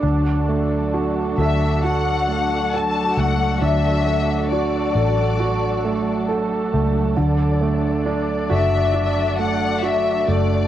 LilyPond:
<<
  \new Staff \with { instrumentName = "Violin section" } { \time 4/4 \key d \major \tempo 4 = 68 r4. e''8 fis''4 a''8 fis''8 | e''4 d''2 r4 | r4. e''4 fis''8 e''8 d''8 | }
  \new Staff \with { instrumentName = "String section" } { \time 4/4 \key d \major << { d'1~ | d'1 | <d' d''>1 | } \\ { <fis fis' a'>1~ | <fis fis' a'>1~ | <fis fis' a'>1 | } >> }
  \new Staff \with { instrumentName = "Grand piano" } { \time 4/4 \key d \major d'8 a8 fis'8 a'8 fis'8 a8 a'8 a8 | d'8 a8 fis'8 a'8 fis'8 a8 a'8 a8 | d8 a8 d'8 fis'8 d'8 a8 fis'8 a8 | }
  \new Staff \with { instrumentName = "Fingered electric bass" } { \clef bass \time 4/4 \key d \major d,4. d,2 cis,8 | d,4. a,,2 cis,8 | d,4. fis,,2 fis,,8 | }
>>